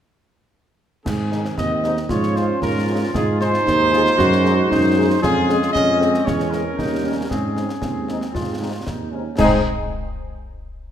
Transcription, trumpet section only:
1.05 G#4
1.57 D#5
2.09 C#5
2.37 C5
2.62 A#4
3.14 G#4
3.40 C5
5.22 G#4
5.73 D#5
6.25 C#5
6.51 A#4
7.29 G#4
9.37 G#4

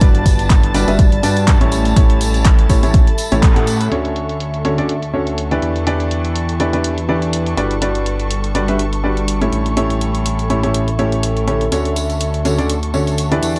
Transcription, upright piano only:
0.01 G3 D4 F#4 G4 B4 D5
0.74 G3 D4 F#4 G4 B4 D5
0.88 G3 D4 F#4 G4 B4 E5
1.23 G3 D4 F#4 G4 B4 D5
1.61 A2 C#4 E4 G4 A4 C#5
1.96 A2 C#4 E4 G4 A4 C#5
2.70 A2 C#4 E4 G4 A4 C#5
2.83 A2 C#4 E4 G4 A4 C#5
3.32 A2 C#4 E4 G4 A4 C#5
3.56 A2 C#4 E4 G4 A4 F#5
3.92 D3 C#4 D4 F#4 A4 C#5
4.65 D3 C#4 D4 F#4 A4 C#5
4.78 D3 C#4 D4 F#4 A4 D5
5.14 D3 C#4 D4 F#4 A4 C#5
5.51 E3 D4 E4 G4 B4 D5
5.87 E3 D4 E4 G4 B4 D5
6.60 E3 D4 E4 G4 B4 D5
6.73 E3 D4 E4 G4 B4 D5
7.09 E3 D4 E4 G4 B4 D5
7.57 G3 D4 F#4 G4 B4 D5
7.82 G3 D4 F#4 G4 B4 D5
8.55 G3 D4 F#4 G4 B4 D5
8.68 G3 D4 F#4 G4 B4 E5
9.04 G3 D4 F#4 G4 B4 D5
9.41 A2 C#4 E4 G4 A4 C#5
9.77 A2 C#4 E4 G4 A4 C#5
10.50 A2 C#4 E4 G4 A4 C#5
10.63 A2 C#4 E4 G4 A4 C#5
10.99 A2 C#4 E4 G4 A4 C#5
11.48 D3 C#4 E4 G4 A4 C#5
11.72 D3 C#4 D4 F#4 A4 C#5
12.45 D3 C#4 D4 F#4 A4 C#5
12.58 D3 C#4 D4 F#4 A4 D5
12.94 D3 C#4 D4 F#4 A4 C#5
13.32 E3 D4 E4 G4 B4 D5

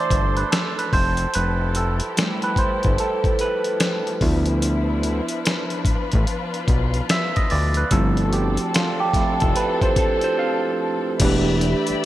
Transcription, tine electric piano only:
Already playing: E3 A3 D4 C5 D5 E5
0.37 B4
0.52 A4
0.78 B4
0.93 C5
1.35 B4
1.76 A4
2.17 G3 A3 E4
2.44 B4
2.58 C5
3.00 A4
3.41 B4
4.22 F3 B3 E4
7.11 E5
7.36 D#5
7.51 D5
7.77 B4
7.92 F3 A3 C4 E4 A4
8.29 F#4
8.33 G4
8.75 F4
9.00 G4
9.16 F3 A3 C4 E4
9.41 A4
9.56 B4
9.82 C5
9.98 A4
10.24 C5
10.39 F5
11.19 E3 A3 D4
11.23 G4 B4

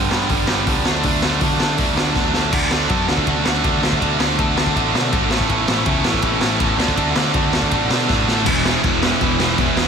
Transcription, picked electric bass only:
0.11 G2
0.30 G1
0.50 G1
0.67 C#2
0.87 D2
1.04 D2
1.24 D2
1.41 D2
1.61 D3
1.78 D2
1.99 D2
2.16 D2
2.36 D2
2.53 D2
2.72 D2
2.89 F#2
3.10 D2
3.28 D2
3.46 D2
3.64 D2
3.83 D2
4.01 D2
4.20 D2
4.39 D2
4.57 D2
4.76 A1
4.95 B2
5.13 G#1
5.31 A1
5.49 A1
5.68 A1
5.86 C#2
6.07 A1
6.23 A1
6.42 A1
6.60 A1
6.78 D2
6.98 D2
7.16 D2
7.34 D2
7.54 D2
7.72 A1
7.90 B2
8.10 A2
8.29 A2
8.47 E1
8.84 E1
9.21 E1
9.39 E1
9.58 E1
9.75 E1

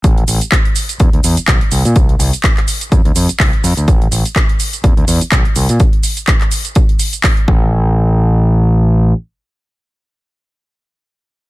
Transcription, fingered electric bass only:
0.04 A1
0.28 A1
1.00 E2
1.13 D2
1.24 E2
1.38 muted fingered electric bass stroke
1.48 B1
1.72 C2
1.85 A#2
1.96 C2
2.19 C2
2.92 F2
3.05 D2
3.16 F2
3.29 muted fingered electric bass stroke
3.40 C2
3.64 F2
3.77 D2
3.88 A1
4.11 A1
4.84 E2
4.97 D2
5.08 E2
5.22 muted fingered electric bass stroke
5.32 B1
5.56 C2
5.70 A#2
7.48 A1

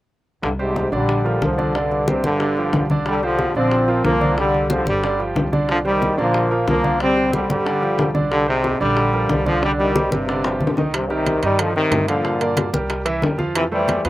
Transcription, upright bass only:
0.43 C2
0.92 A#1
1.42 C2
2.24 G1
2.73 C2
3.55 A#1
4.04 C2
4.86 G1
5.35 C2
6.18 A#1
6.67 C2
7.49 G1
7.98 C2
8.81 A#1
9.29 C2
10.11 G1
10.60 C2
11.43 G2
11.91 G2
12.73 C2
13.23 F2
14.05 F2

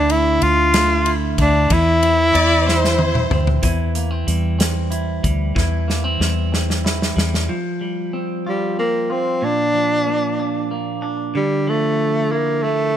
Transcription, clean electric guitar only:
Already playing: D3 E4
0.10 A3
0.74 A3
1.06 E4
1.39 A3
1.71 E3 E4
2.02 C4
2.34 E4
2.67 C4
2.98 E4
3.31 C4
3.63 E3 E4
3.95 A#3
4.11 C4
4.27 G3
4.59 C4
4.91 E4
5.23 G3
5.55 E3 E4
5.88 A#3
6.04 C4
6.20 G3
6.52 C4
6.85 E4
7.16 G3
7.49 F3
7.81 G3
8.13 C4
8.46 F4
8.79 C4
9.10 F4
9.42 A#2
9.75 F3
10.07 A#3
10.40 D4
10.71 A#3
11.02 D4
11.35 D3
11.67 F3
12.31 E4
12.64 A3

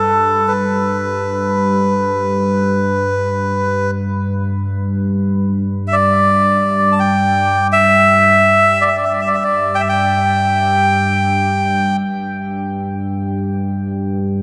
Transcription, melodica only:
Already playing: A4
0.48 B4
5.88 E5
5.93 D5
6.92 A5
6.99 G5
7.72 E5
8.81 D5
8.88 E5
8.97 D5
9.04 E5
9.13 D5
9.21 E5
9.27 D5
9.34 E5
9.44 D5
9.75 G5
9.80 E5
9.89 G5

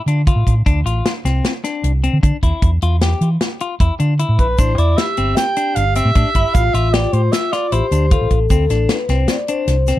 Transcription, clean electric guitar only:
0.08 D4
0.27 F4
0.66 D4
0.86 F4
1.25 C4
1.64 D4
2.04 C4
2.23 D4
2.43 E4
2.83 F4
3.02 G4
3.61 F4
3.81 E4
4.00 D4
4.19 E4
4.59 D4
4.78 E4
5.18 C4
5.57 D4
5.96 C4
6.16 D4
6.36 E4
6.75 F4
6.94 G4
7.53 F4
7.72 E4
7.92 D4
8.12 F4
8.51 C4
8.71 D4
9.10 C4
9.49 D4
9.88 C4

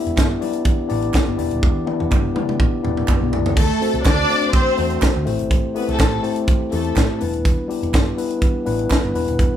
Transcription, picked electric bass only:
0.07 E1
0.18 G1
0.91 A1
1.28 G1
1.39 E1
1.52 D#1
1.63 E1
2.01 E1
2.12 G1
2.86 E1
3.22 B1
3.32 C2
3.45 C#2
3.57 D2
3.94 C2
4.06 D2
4.79 E2
5.16 D2
5.27 A1
5.40 G#1
5.51 A1
5.89 C2
6.00 A1
6.73 E2
6.97 A2
7.22 E1
7.35 D#1
7.46 E1
7.83 E1
7.94 G1
8.67 A1
9.04 G1
9.16 E1
9.28 D#1
9.39 E1

